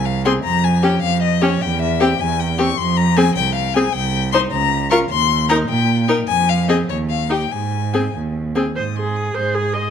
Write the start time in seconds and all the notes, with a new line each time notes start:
Already playing: C2
0.05 F5
0.25 C4 G#4 C6
0.44 F2 A#5
0.64 G#5
0.83 C#4 G4 G5
1.02 F2 F5
1.23 D#5
1.42 C#4 G4 C#5
1.61 E2 G5
1.82 E5
2.00 C4 G4 G5
2.20 E2 G#5
2.40 G5
2.58 C4 G4 C#6
2.78 F2 C6
2.97 A#5
3.17 C4 G#4 G#5
3.36 C2 G5
3.55 F5
3.74 C4 G#4 G#5
3.93 C2 G5
4.32 D#4 C5 C6
4.52 C#2 A#5
4.91 F4 A#4 C#6
5.09 D#2 C6
5.49 D#4 A#4 A#5
5.69 A#2 G5
6.08 D#4 A#4
6.28 F2 G#5
6.49 F5
6.68 C4 G#4 D#5
6.89 D#2 C#5
7.10 F5
7.30 D#4 G4 G5
7.51 G#2 G#5
7.94 C4 G#4
8.14 D#2
8.56 C4 G#4
8.76 G#2 C5 D#6
8.96 G#4 C6
9.16 D#6
9.35 G#2 G#4 C5 C6
9.54 G#4 D#6
9.74 D#5 C6